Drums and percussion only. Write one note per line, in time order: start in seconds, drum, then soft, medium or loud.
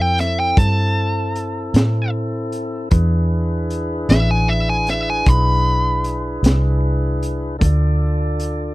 0.18 snare soft
0.18 closed hi-hat medium
0.57 kick loud
0.57 closed hi-hat medium
1.35 closed hi-hat medium
1.74 snare loud
1.74 closed hi-hat medium
2.52 closed hi-hat medium
2.91 kick loud
2.91 closed hi-hat medium
3.70 closed hi-hat medium
4.09 snare loud
4.09 closed hi-hat medium
4.87 snare soft
4.87 closed hi-hat medium
5.26 kick loud
5.26 closed hi-hat medium
6.04 closed hi-hat medium
6.44 snare loud
6.44 closed hi-hat medium
7.23 closed hi-hat medium
7.61 kick loud
7.61 closed hi-hat medium
8.40 closed hi-hat medium